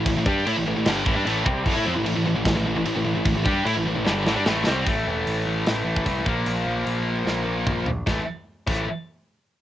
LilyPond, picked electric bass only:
\new Staff \with { instrumentName = "Picked electric bass" } { \clef bass \time 4/4 \key a \phrygian \tempo 4 = 150 a,,16 a,,16 g,8 a,16 a,,16 a,,16 a,,16 g,,8 a,,16 g,16 a,,8 c,8 | a,,16 a,16 f,16 a,,16 a,,16 a,,16 a,,16 a,,16 a,,16 a,,16 a,,16 a,,16 a,,16 a,,16 a,,16 a,,16 | a,,16 a,,16 g,8 a,16 a,,16 a,,16 a,,16 g,,8 a,,16 g,16 a,,8 c,8 | a,,8 e,,8 a,,8 a,,8 a,,8 a,,8 c,8 bes,,8 |
bes,,8 bes,,8 bes,,4 bes,,8 bes,,8 bes,,8 bes,,8 | a,,16 r4 r16 a,,8 r2 | }